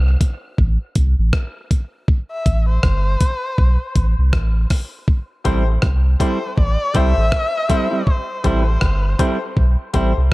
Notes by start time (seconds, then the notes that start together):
Already playing: C2
0.21 kick, closed hi-hat
0.58 A1, kick
0.95 C2, kick, closed hi-hat
1.19 A1
1.33 kick, cross-stick
1.71 kick, closed hi-hat
2.08 kick
2.32 E5
2.46 A1, kick, closed hi-hat
2.69 C5
2.83 G1, kick, cross-stick
3.21 kick, closed hi-hat
3.58 B1, kick
3.96 A1, kick, closed hi-hat
4.18 C2
4.33 A1, kick, cross-stick
4.70 kick, cross-stick, open hi-hat
5.08 kick
5.44 A1 G3 C4 E4 G4 A4 C5, kick, closed hi-hat
5.82 C2, kick, cross-stick
6.20 G3 C4 E4 G4 A4 C5, kick, closed hi-hat
6.58 A1 D5, kick
6.94 C2 G3 C4 E4 G4 A4 C5 E5, kick, closed hi-hat
7.17 A1 A4 C5, muted clean electric guitar stroke
7.32 kick, cross-stick
7.69 G3 C4 E4 G4 A4 C5, kick, closed hi-hat
7.91 G3 C4 E4
8.07 C5, kick
8.44 A1 G3 C4 E4 G4 A4 C5, kick, closed hi-hat
8.81 G1, kick, cross-stick
9.18 G3 C4 E4 G4 A4 C5, kick, closed hi-hat
9.57 B1, kick
9.93 A1 G3 C4 E4 G4 A4 C5, kick, closed hi-hat
10.17 C2, muted clean electric guitar stroke